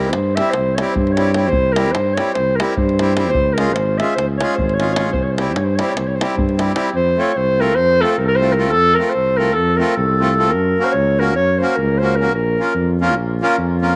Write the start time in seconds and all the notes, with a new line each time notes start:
Already playing: C2 E4 G4 A#4
0.05 davul high
0.10 C5, davul high
0.14 G2
0.35 G3 C4 E4 G4 E5, davul high
0.50 C5, davul high
0.55 C2
0.75 G3 C#5, davul high
0.80 C4 E4 G4
0.92 G2 C5, davul low
1.07 davul high
1.13 C#5
1.17 G3 C4 E4 G4, davul high
1.33 G3 C4 E4 G4 C#5, davul high
1.47 C5
1.52 C2, davul low
1.72 G3 C4 E4 G4 A#4, davul high
1.86 davul high
1.92 G2 C5, davul high
2.14 G3 C4 E4 C#5, davul high
2.18 G4
2.33 C2 C5, davul high
2.56 G3 A#4
2.60 C4 E4 G4, davul high
2.76 G2 C5, davul low
2.89 davul high
2.99 G3 C4 E4 G4, davul high
3.16 G3 C4 E4 G4, davul high
3.29 C#2 C5
3.35 davul low
3.53 G#3 A#4
3.58 C#4 F4 G#4, davul high
3.67 davul high
3.73 G#1 C5, davul high
3.98 G#3 C#4 F4 G#4 E5, davul high
4.15 C#2 C5, davul high
4.37 G#3 C#4 C#5, davul high
4.42 F4 G#4
4.55 G#1 C5
4.59 davul low
4.69 davul high
4.74 C#5
4.79 G#3 C#4 F4 G#4, davul high
4.92 G#3 C#4 C#5, davul high
4.97 F4 G#4
5.12 C2 C5, davul low
5.23 C#5
5.31 C5
5.37 G3 C4 E4 G4 C#5, davul high
5.47 C5, davul high
5.54 G2 C#5, davul high
5.64 C5
5.76 G3 C4 E4 C#5, davul high
5.80 G4 C5
5.89 C#5, davul high
5.95 C2 C5, davul high
6.07 C#5
6.15 C5
6.20 G3 C4 E4 G4, davul high
6.30 davul high
6.37 G2, davul low
6.49 davul high
6.57 G3 C4 E4 G4, davul high
6.74 G3 C4 E4 G4, davul high
6.93 F2 C5
7.17 A3 C4 F4 A4 C#5
7.36 C2 C5
7.58 A3 C4 F4 A4 A#4
7.75 F2 C5
8.01 A3 C4 F4 A4
8.18 C2 A#4
8.26 A4 A#4
8.36 A3 C5
8.41 C4 F4 A4
8.52 A#4
8.58 A3 C4 F4 A4
8.70 A4
8.74 F2
8.94 A3 A#4
8.99 C4 F4 A4
9.09 C5
9.16 C2
9.37 A3 C4 F4 A4 A#4
9.53 F2 A4
9.76 A3 C4 F4 A4 A#4
9.95 C2 A4
10.20 A3 C4 F4 A4
10.37 A3 C4 F4 A4
10.50 F#2 A#4
10.78 A#3 C#4 F#4 A#4
10.84 C5
10.89 C5 C#5
10.95 C#2
11.19 A#3 C#4 F#4 A#4
11.36 F#2 C#5
11.58 A#3 C#4 C5
11.63 F#4 A#4
11.76 C#2 A#4
11.98 A#3 C#4 C5
12.03 F#4 A#4
12.16 A#4
12.20 A#3 C#4 F#4 A#4
12.33 A#1 A#4
12.59 A#3 C#4 F4 A#4
12.74 F2
13.01 A#3 C#4 F4 A#4
13.16 A#1
13.41 A#3 C#4 F4 A#4
13.58 F2
13.81 A#3 C#4 F4 A#4